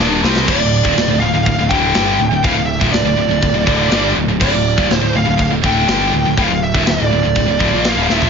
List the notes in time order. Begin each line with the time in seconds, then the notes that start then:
Already playing: D4
0.00 D#1 D#2 A#2 D#3
0.23 C2 C3 G3 C4, snare
0.36 snare
0.47 D1 D2 A2 D5, kick, crash, china
0.60 D1 D2 A2
0.83 D#1 D#2 A#2, kick
0.96 D1 D2 A2, snare, china
1.08 D1 D2 A2
1.20 D1 D2 A2 F5
1.33 D1 D2 A2
1.46 D1 D2 A2 F5, kick, china
1.58 D1 D2 A2
1.69 D1 D2 A2 D3 G5, kick
1.94 G1 G2 D3 G3, snare, china
2.19 D1 D2 A2
2.31 D1 D2 A2
2.44 D1 D2 A2 F5, kick, china
2.56 D1 D2 A2
2.66 E5
2.81 D#1 D#2 A#2, kick
2.92 D1 D2 A2 D5, snare, china
3.04 D1 D2 A2
3.17 D1 D2 A2
3.29 D1 D2 A2
3.42 D1 D2 A2, kick, china
3.54 D1 D2 A2
3.66 D1 D2 A2 D3, kick
3.91 G1 G2 D3 G3, snare, china
4.16 D1 D2 A2
4.28 D1 D2 A2
4.40 D1 D2 A2 D5, kick, china, crash
4.53 D1 D2 A2
4.77 D#1 D#2 A#2, kick
4.88 D1 D2 A2, snare, china
4.97 D2 C5
5.01 D1 A2
5.13 D1 D2 A2 F5
5.25 D1 D2 A2
5.37 D1 D2 A2, kick, china
5.41 F5
5.51 D1 D2 A2
5.63 D1 D2 A2 D3 G5, kick
5.88 G1 G2 D3 G3, snare, china
6.14 D1 D2 A2
6.25 D1 D2 A2
6.37 D1 D2 A2, kick, china
6.42 F5
6.51 D1 D2 A2
6.64 E5
6.74 D#1 D#2 A#2, kick
6.86 D1 D2 A2, snare, china
6.90 D5
7.00 D1 D2 A2
7.12 D1 D2 A2
7.25 D1 D2 A2
7.35 D1 D2 A2, kick, china
7.48 D1 D2 A2
7.59 D1 D2 A2, kick
7.72 A#1 A#2 F3 A#3
7.84 snare, china
7.89 F5
7.97 D1 D2 A2
8.09 D#1 D#2 A#2 E5, snare
8.22 A#1 A#2 F3, floor tom